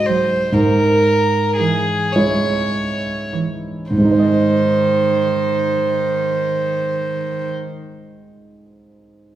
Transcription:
0, 0, Header, 1, 4, 480
1, 0, Start_track
1, 0, Key_signature, -4, "major"
1, 0, Tempo, 904977
1, 277, Time_signature, 6, 3, 24, 8
1, 277, Tempo, 1041667
1, 757, Tempo, 1145038
1, 1237, Tempo, 1200000
1, 1717, Tempo, 1090909
1, 4112, End_track
2, 0, Start_track
2, 0, Title_t, "Violin"
2, 0, Program_c, 0, 40
2, 33, Note_on_c, 0, 72, 58
2, 282, Note_on_c, 0, 70, 67
2, 289, Note_off_c, 0, 72, 0
2, 753, Note_off_c, 0, 70, 0
2, 756, Note_on_c, 0, 68, 57
2, 992, Note_on_c, 0, 73, 58
2, 999, Note_off_c, 0, 68, 0
2, 1478, Note_off_c, 0, 73, 0
2, 1720, Note_on_c, 0, 72, 45
2, 3283, Note_off_c, 0, 72, 0
2, 4112, End_track
3, 0, Start_track
3, 0, Title_t, "Grand piano"
3, 0, Program_c, 1, 0
3, 0, Control_c, 1, 64, 127
3, 0, Note_on_c, 1, 56, 34
3, 0, Note_on_c, 1, 66, 34
3, 0, Note_on_c, 1, 72, 36
3, 257, Note_off_c, 1, 56, 0
3, 257, Note_off_c, 1, 66, 0
3, 257, Note_off_c, 1, 72, 0
3, 277, Note_on_c, 1, 44, 45
3, 286, Control_c, 1, 64, 0
3, 370, Control_c, 1, 64, 127
3, 979, Note_off_c, 1, 44, 0
3, 1005, Note_on_c, 1, 56, 34
3, 1006, Note_on_c, 1, 73, 37
3, 1007, Note_on_c, 1, 64, 33
3, 1706, Note_off_c, 1, 56, 0
3, 1706, Note_off_c, 1, 73, 0
3, 1707, Note_off_c, 1, 64, 0
3, 1715, Note_on_c, 1, 44, 29
3, 1728, Control_c, 1, 64, 0
3, 1748, Note_on_c, 1, 56, 31
3, 1777, Note_on_c, 1, 63, 29
3, 1807, Note_on_c, 1, 72, 28
3, 1827, Control_c, 1, 64, 127
3, 1841, Note_on_c, 1, 75, 28
3, 3278, Note_off_c, 1, 44, 0
3, 3311, Note_off_c, 1, 56, 0
3, 3340, Note_off_c, 1, 63, 0
3, 3369, Note_off_c, 1, 72, 0
3, 3403, Note_off_c, 1, 75, 0
3, 4112, End_track
4, 0, Start_track
4, 0, Title_t, "Cello"
4, 0, Program_c, 2, 42
4, 48, Note_on_c, 2, 54, 44
4, 221, Note_off_c, 2, 54, 0
4, 770, Note_on_c, 2, 52, 45
4, 942, Note_off_c, 2, 52, 0
4, 1486, Note_on_c, 2, 52, 36
4, 1662, Note_off_c, 2, 52, 0
4, 1720, Note_on_c, 2, 51, 34
4, 3283, Note_off_c, 2, 51, 0
4, 4112, End_track
0, 0, End_of_file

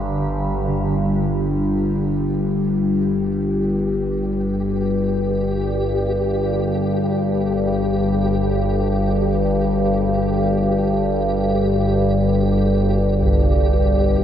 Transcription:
0, 0, Header, 1, 5, 480
1, 0, Start_track
1, 0, Tempo, 500000
1, 13669, End_track
2, 0, Start_track
2, 0, Title_t, "Synth texture"
2, 0, Program_c, 0, 99
2, 0, Note_on_c, 0, 70, 69
2, 692, Note_off_c, 0, 70, 0
2, 694, Note_on_c, 0, 67, 70
2, 13669, Note_off_c, 0, 67, 0
2, 13669, End_track
3, 0, Start_track
3, 0, Title_t, "Ambient pad"
3, 0, Program_c, 1, 92
3, 0, Note_on_c, 1, 50, 72
3, 0, Note_on_c, 1, 55, 63
3, 0, Note_on_c, 1, 67, 66
3, 653, Note_off_c, 1, 50, 0
3, 669, Note_off_c, 1, 67, 0
3, 671, Note_off_c, 1, 55, 0
3, 13669, End_track
4, 0, Start_track
4, 0, Title_t, "Synth drone"
4, 0, Program_c, 2, 95
4, 0, Note_on_c, 2, 31, 68
4, 0, Note_on_c, 2, 43, 70
4, 657, Note_off_c, 2, 43, 0
4, 660, Note_off_c, 2, 31, 0
4, 669, Note_on_c, 2, 43, 76
4, 671, Note_on_c, 2, 31, 77
4, 13669, Note_off_c, 2, 31, 0
4, 13669, Note_off_c, 2, 43, 0
4, 13669, End_track
5, 0, Start_track
5, 0, Title_t, "Kettle gongs"
5, 0, Program_c, 3, 14
5, 657, Note_on_c, 3, 50, 54
5, 7853, Note_off_c, 3, 50, 0
5, 12695, Note_on_c, 3, 36, 59
5, 13575, Note_on_c, 3, 34, 55
5, 13669, Note_off_c, 3, 34, 0
5, 13669, Note_off_c, 3, 36, 0
5, 13669, End_track
0, 0, End_of_file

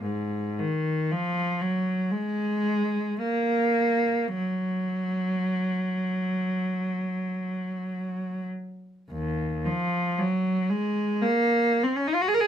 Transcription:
0, 0, Header, 1, 2, 480
1, 0, Start_track
1, 0, Tempo, 1060071
1, 14, Time_signature, 4, 2, 24, 8
1, 1452, Tempo, 1185771
1, 2412, Tempo, 1138520
1, 3372, Tempo, 1265823
1, 3852, Tempo, 1038062
1, 5401, End_track
2, 0, Start_track
2, 0, Title_t, "Cello"
2, 0, Program_c, 0, 42
2, 12, Note_on_c, 0, 44, 55
2, 261, Note_off_c, 0, 44, 0
2, 267, Note_on_c, 0, 51, 56
2, 501, Note_off_c, 0, 51, 0
2, 502, Note_on_c, 0, 53, 65
2, 729, Note_on_c, 0, 54, 57
2, 733, Note_off_c, 0, 53, 0
2, 957, Note_on_c, 0, 56, 65
2, 965, Note_off_c, 0, 54, 0
2, 1447, Note_off_c, 0, 56, 0
2, 1447, Note_on_c, 0, 58, 65
2, 1920, Note_off_c, 0, 58, 0
2, 1921, Note_on_c, 0, 54, 56
2, 3599, Note_off_c, 0, 54, 0
2, 3847, Note_on_c, 0, 39, 62
2, 4092, Note_off_c, 0, 39, 0
2, 4096, Note_on_c, 0, 53, 71
2, 4341, Note_off_c, 0, 53, 0
2, 4345, Note_on_c, 0, 54, 65
2, 4582, Note_on_c, 0, 56, 69
2, 4583, Note_off_c, 0, 54, 0
2, 4819, Note_off_c, 0, 56, 0
2, 4819, Note_on_c, 0, 58, 73
2, 5104, Note_off_c, 0, 58, 0
2, 5107, Note_on_c, 0, 60, 59
2, 5164, Note_on_c, 0, 61, 56
2, 5165, Note_off_c, 0, 60, 0
2, 5211, Note_off_c, 0, 61, 0
2, 5215, Note_on_c, 0, 63, 60
2, 5249, Note_on_c, 0, 65, 57
2, 5252, Note_off_c, 0, 63, 0
2, 5283, Note_off_c, 0, 65, 0
2, 5283, Note_on_c, 0, 66, 60
2, 5312, Note_on_c, 0, 68, 62
2, 5313, Note_off_c, 0, 66, 0
2, 5341, Note_on_c, 0, 70, 66
2, 5342, Note_off_c, 0, 68, 0
2, 5370, Note_on_c, 0, 68, 61
2, 5373, Note_off_c, 0, 70, 0
2, 5401, Note_off_c, 0, 68, 0
2, 5401, End_track
0, 0, End_of_file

